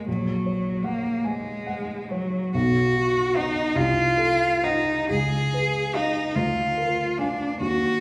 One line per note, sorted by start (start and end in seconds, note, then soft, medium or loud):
0.07 2.51 A#1 soft
0.07 0.85 F#3 medium
0.46 1.08 C#5 soft
0.84 1.27 A#3 medium
0.84 1.49 F#5 soft
1.24 2.12 G#3 medium
1.24 1.66 G#5 soft
1.67 2.38 F#5 soft
2.10 2.54 F#3 medium
2.10 2.55 C#5 soft
2.54 3.72 B1 soft
2.54 3.37 F#4 medium
2.96 3.60 F#4 soft
3.35 3.77 D#4 medium
3.35 3.72 D#5 soft
3.35 3.72 F#5 soft
3.75 5.05 C2 soft
3.75 4.65 F4 medium
4.18 4.91 A4 soft
4.63 5.09 D#4 medium
4.63 5.06 D#5 soft
4.63 5.06 F#5 soft
5.09 6.32 C#2 soft
5.09 5.96 G#4 medium
5.54 6.19 B4 soft
5.94 6.37 D#4 medium
5.94 6.31 D#5 soft
5.94 6.31 F5 soft
6.35 7.57 D2 soft
6.35 7.19 F4 medium
6.78 7.44 A#4 soft
7.17 7.60 D4 medium
7.17 7.57 F5 soft
7.17 7.57 G#5 soft
7.60 8.00 D#2 soft
7.60 8.00 F#4 medium